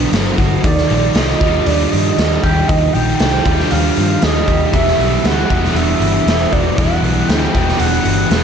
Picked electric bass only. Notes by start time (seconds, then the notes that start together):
0.13 G1
0.38 G1
0.64 D#2
0.91 A#1
1.15 C2
1.41 D#2
1.67 D#2
1.93 G2
2.18 D#2
2.44 D#2
2.70 D#2
2.95 A#1
3.20 C2
3.45 D#2
3.72 D#2
3.98 G2
4.23 D#2
4.48 D#2
4.74 E1
4.99 B1
5.24 D2
5.50 E1
5.74 E1
6.00 G1
6.27 E1
6.52 E1
6.78 E1
7.03 B1
7.29 D2
7.54 E1
7.80 E1
8.05 G1
8.31 E1